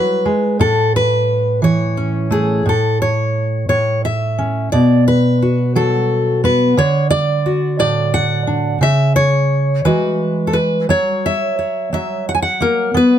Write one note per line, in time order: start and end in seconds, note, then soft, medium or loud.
0.00 0.25 F#3 medium
0.00 0.60 B4 medium
0.25 0.60 G#3 medium
0.59 2.64 A2 medium
0.59 0.94 A4 medium
0.96 1.64 B4 medium
1.62 2.63 E3 medium
1.62 2.68 C#5 medium
1.97 2.63 C#4 soft
2.31 2.62 A3 medium
2.31 2.67 G#4 medium
2.66 3.68 A2 medium
2.66 3.01 A4 medium
3.02 3.68 C#5 medium
3.69 4.73 A2 medium
3.69 4.04 C#5 medium
4.05 4.72 E5 medium
4.38 4.69 C#4 medium
4.72 6.73 B2 medium
4.72 5.07 D5 medium
5.08 5.76 B4 medium
5.42 6.74 F#4 soft
5.75 6.73 F#3 medium
5.75 6.44 A4 medium
6.44 6.74 B3 medium
6.44 6.78 B4 medium
6.77 8.82 D3 medium
6.77 7.10 C#5 medium
7.10 7.78 D5 loud
7.46 8.78 F#4 soft
7.79 8.80 A2 medium
7.79 8.82 D5 loud
8.14 8.82 F#5 loud
8.47 8.78 D4 medium
8.81 9.81 C#3 medium
8.81 9.15 E5 medium
9.16 9.85 C#5 medium
9.85 10.86 E3 medium
9.85 10.86 G#3 soft
9.85 11.29 F#4 soft
9.85 10.52 B4 medium
10.47 10.55 A4 medium
10.53 10.89 B4 medium
10.89 11.92 F#3 medium
10.89 11.57 C#5 medium
11.26 11.93 E5 medium
11.59 12.91 C#5 soft
11.93 13.19 F#3 medium
11.93 12.28 E5 medium
12.29 12.34 F#5 medium
12.35 12.41 G#5 medium
12.42 12.96 F#5 medium
12.60 12.91 A#3 medium
12.60 12.96 A#4 medium
12.94 13.19 B3 medium
12.94 13.19 B4 medium